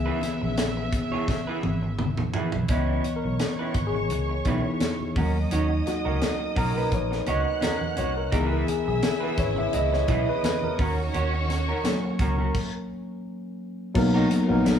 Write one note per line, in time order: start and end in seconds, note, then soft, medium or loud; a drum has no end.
0.00 2.67 C#3 medium
0.00 2.30 D#3 medium
0.00 2.30 E3 medium
0.00 2.30 B3 soft
0.00 2.67 B3 medium
0.00 1.95 G#4 medium
0.00 1.94 E5 medium
0.00 2.66 E5 medium
0.06 0.22 E4 medium
0.06 0.22 G#4 medium
0.06 0.22 B4 medium
0.21 muted clean electric guitar stroke soft
0.21 snare soft
0.21 closed hi-hat medium
0.21 muted conga medium
0.42 0.98 A#1 medium
0.42 muted clean electric guitar stroke soft
0.57 muted clean electric guitar stroke soft
0.57 snare loud
0.57 closed hi-hat medium
0.57 high conga medium
0.77 muted clean electric guitar stroke soft
0.92 kick loud
0.92 closed hi-hat medium
1.10 1.28 E4 medium
1.10 1.29 G#4 medium
1.10 1.28 C#5 medium
1.10 low conga medium
1.28 muted clean electric guitar stroke soft
1.28 kick medium
1.28 snare medium
1.28 muted conga soft
1.28 low conga medium
1.47 1.62 E4 medium
1.47 1.63 G#4 medium
1.47 1.63 B4 medium
1.63 2.20 G#1 medium
1.63 muted clean electric guitar stroke soft
1.63 high tom medium
1.63 muted conga medium
1.83 muted clean electric guitar stroke soft
1.98 muted clean electric guitar stroke soft
1.98 mid tom medium
1.98 high conga medium
2.17 muted clean electric guitar stroke soft
2.17 mid tom medium
2.17 high conga medium
2.34 2.53 E4 medium
2.34 2.53 G#4 medium
2.34 2.52 B4 medium
2.34 muted fingered electric bass stroke soft
2.34 floor tom loud
2.52 2.66 B1 medium
2.52 muted clean electric guitar stroke soft
2.52 floor tom medium
2.68 2.97 C#2 loud
2.68 3.71 E3 soft
2.68 3.71 B3 soft
2.68 3.02 C#4 medium
2.68 3.03 E4 medium
2.68 3.03 B4 medium
2.68 5.12 C#5 medium
2.68 3.18 C#5 medium
2.68 3.71 D#5 medium
2.68 5.12 C#6 medium
2.68 kick medium
2.68 closed hi-hat medium
2.68 muted conga soft
3.04 closed hi-hat medium
3.04 muted conga soft
3.16 3.89 A#4 medium
3.24 3.37 B1 medium
3.24 muted clean electric guitar stroke soft
3.39 muted clean electric guitar stroke soft
3.39 snare loud
3.39 closed hi-hat medium
3.39 high conga medium
3.59 3.75 C#4 medium
3.59 3.75 E4 medium
3.59 3.75 B4 medium
3.74 4.11 G#1 medium
3.74 muted clean electric guitar stroke soft
3.74 kick medium
3.74 closed hi-hat medium
3.87 4.59 G#4 medium
3.93 muted clean electric guitar stroke soft
3.93 low conga medium
4.10 4.39 C#2 medium
4.10 muted clean electric guitar stroke soft
4.10 closed hi-hat medium
4.10 muted conga soft
4.29 muted clean electric guitar stroke soft
4.45 4.61 B1 medium
4.45 4.77 E3 soft
4.45 4.77 B3 soft
4.45 4.65 C#4 medium
4.45 4.78 D#4 medium
4.45 4.65 E4 medium
4.45 4.64 B4 medium
4.45 kick medium
4.45 closed hi-hat medium
4.45 muted conga soft
4.45 low conga medium
4.58 5.24 E4 medium
4.65 muted clean electric guitar stroke soft
4.80 muted clean electric guitar stroke soft
4.80 snare medium
4.80 closed hi-hat medium
4.80 high conga medium
5.00 high conga medium
5.15 5.44 D#2 loud
5.15 7.94 F#3 medium
5.15 7.94 A#3 soft
5.15 5.31 C#4 medium
5.15 7.95 C#4 medium
5.15 5.31 F#4 soft
5.15 5.32 A#4 medium
5.15 7.24 D#5 medium
5.15 7.23 D#6 medium
5.15 kick loud
5.15 open hi-hat soft
5.15 high conga soft
5.36 muted clean electric guitar stroke soft
5.51 5.80 D#2 loud
5.51 5.70 C#4 medium
5.51 5.88 D#4 medium
5.51 5.70 F#4 medium
5.51 5.69 C#5 medium
5.51 closed hi-hat medium
5.51 muted conga soft
5.70 muted clean electric guitar stroke soft
5.86 6.07 F#4 medium
5.86 muted clean electric guitar stroke soft
5.86 snare soft
5.86 closed hi-hat medium
5.86 muted conga soft
6.05 6.19 C#2 medium
6.05 6.19 C#4 soft
6.05 6.18 F#4 medium
6.05 6.18 A#4 medium
6.05 6.57 A#4 medium
6.21 muted clean electric guitar stroke soft
6.21 snare loud
6.21 closed hi-hat medium
6.21 high conga medium
6.39 muted clean electric guitar stroke soft
6.56 6.85 B1 medium
6.56 6.71 C#4 medium
6.56 6.71 F#4 medium
6.56 6.72 A#4 medium
6.56 6.77 A#4 loud
6.56 kick loud
6.56 open hi-hat medium
6.75 6.89 C#4 soft
6.75 6.89 F#4 soft
6.75 6.88 A#4 medium
6.75 6.93 B4 medium
6.75 low conga medium
6.92 7.20 A#1 medium
6.92 7.30 C#5 loud
6.92 kick medium
6.92 closed hi-hat medium
6.92 muted conga soft
6.92 low conga medium
7.11 muted clean electric guitar stroke soft
7.11 snare soft
7.26 7.43 C#2 medium
7.26 7.46 C#4 medium
7.26 7.46 F#4 medium
7.26 7.45 C#5 medium
7.26 7.61 D#5 loud
7.26 8.31 F#5 medium
7.26 8.31 F#6 medium
7.26 closed hi-hat medium
7.26 muted conga medium
7.45 muted clean electric guitar stroke soft
7.61 7.80 C#4 medium
7.61 7.80 F#4 medium
7.61 7.79 A#4 medium
7.61 snare loud
7.61 closed hi-hat medium
7.61 high conga medium
7.80 muted clean electric guitar stroke soft
7.80 high conga medium
7.96 8.26 C2 medium
7.96 8.12 C#4 medium
7.96 8.12 F#4 medium
7.96 8.13 C#5 medium
7.96 8.18 C#5 medium
7.96 closed hi-hat medium
7.96 high conga soft
8.16 8.34 A#4 medium
8.16 muted clean electric guitar stroke soft
8.32 8.61 C#2 loud
8.32 10.77 C#3 medium
8.32 10.75 E3 soft
8.32 10.75 B3 soft
8.32 10.77 B3 medium
8.32 8.46 D#4 medium
8.32 10.77 E4 medium
8.32 10.76 E4 medium
8.32 8.47 G4 medium
8.32 8.51 G#4 medium
8.32 8.47 A#4 medium
8.32 10.06 E5 medium
8.32 10.06 E6 medium
8.32 kick loud
8.32 closed hi-hat medium
8.32 muted conga soft
8.46 8.65 E4 medium
8.46 8.65 G#4 medium
8.46 8.66 B4 medium
8.53 8.69 A#4 medium
8.67 8.86 G#4 medium
8.67 closed hi-hat medium
8.67 muted conga medium
8.86 9.01 B1 medium
8.86 9.24 G#4 medium
8.86 muted clean electric guitar stroke soft
9.02 muted clean electric guitar stroke soft
9.02 snare loud
9.02 closed hi-hat medium
9.02 high conga medium
9.20 9.36 E4 medium
9.20 9.37 G#4 medium
9.20 9.37 B4 medium
9.20 9.39 B4 medium
9.37 9.67 G#1 medium
9.37 9.58 C#5 loud
9.37 muted clean electric guitar stroke soft
9.37 kick loud
9.37 closed hi-hat medium
9.56 9.75 E5 medium
9.56 muted clean electric guitar stroke soft
9.56 low conga medium
9.73 10.02 C#2 medium
9.73 9.83 D#5 loud
9.73 muted clean electric guitar stroke soft
9.73 closed hi-hat medium
9.93 10.29 C#5 medium
9.93 muted clean electric guitar stroke soft
9.93 snare soft
10.08 10.24 B1 medium
10.08 10.28 E4 medium
10.08 10.28 G#4 medium
10.08 10.27 B4 medium
10.08 10.78 D#5 medium
10.08 10.78 D#6 medium
10.08 kick medium
10.08 closed hi-hat medium
10.08 muted conga medium
10.08 low conga medium
10.28 10.44 B4 loud
10.28 muted clean electric guitar stroke soft
10.43 10.64 B4 medium
10.43 muted clean electric guitar stroke soft
10.43 snare loud
10.43 closed hi-hat medium
10.43 high conga medium
10.62 11.65 A#4 medium
10.62 high conga medium
10.78 11.08 D#2 medium
10.78 12.54 D#3 medium
10.78 12.53 C#4 medium
10.78 10.94 C#4 medium
10.78 12.53 F#4 medium
10.78 10.95 F#4 medium
10.78 10.95 A#4 medium
10.78 12.52 C#5 medium
10.78 12.51 C#6 medium
10.78 kick loud
10.78 open hi-hat soft
10.78 high conga soft
10.98 muted clean electric guitar stroke soft
11.13 11.71 D#2 loud
11.13 11.33 C#4 medium
11.13 11.34 F#4 medium
11.13 11.33 C#5 medium
11.13 closed hi-hat medium
11.13 muted conga soft
11.33 muted clean electric guitar stroke soft
11.48 muted clean electric guitar stroke soft
11.48 snare soft
11.48 closed hi-hat medium
11.48 muted conga medium
11.69 11.82 C#4 soft
11.69 11.82 F#4 soft
11.69 11.81 A#4 soft
11.84 12.86 F#3 medium
11.84 12.87 A#3 medium
11.84 12.87 C#4 medium
11.84 muted clean electric guitar stroke soft
11.84 snare loud
11.84 closed hi-hat loud
11.84 high conga medium
12.04 muted clean electric guitar stroke soft
12.19 12.48 C#2 medium
12.19 12.34 C#4 medium
12.19 12.35 F#4 medium
12.19 12.35 A#4 medium
12.19 kick loud
12.19 closed hi-hat medium
12.36 12.52 C#4 soft
12.36 12.52 F#4 soft
12.36 12.51 A#4 medium
12.36 low conga medium
12.54 kick loud
12.54 crash medium
13.94 14.24 B1 loud
13.94 14.33 F#3 loud
13.94 14.79 F#3 medium
13.94 14.33 A#3 loud
13.94 14.34 B3 medium
13.94 14.79 D#4 medium
13.94 14.34 D#4 medium
13.94 14.79 A#4 medium
13.94 14.35 A#4 loud
13.94 muted clean electric guitar stroke soft
13.94 kick medium
13.94 crash loud
13.94 muted conga medium
14.14 14.29 D#4 medium
14.14 14.30 F#4 medium
14.14 14.30 A#4 medium
14.30 muted clean electric guitar stroke soft
14.30 snare soft
14.30 closed hi-hat medium
14.30 muted conga medium
14.48 14.79 A#1 medium
14.48 14.79 F#3 medium
14.48 14.79 A#3 medium
14.48 14.79 B3 medium
14.48 14.79 D#4 medium
14.48 14.79 A#4 loud
14.48 muted clean electric guitar stroke soft
14.65 muted clean electric guitar stroke soft
14.65 snare loud
14.65 closed hi-hat medium
14.65 high conga medium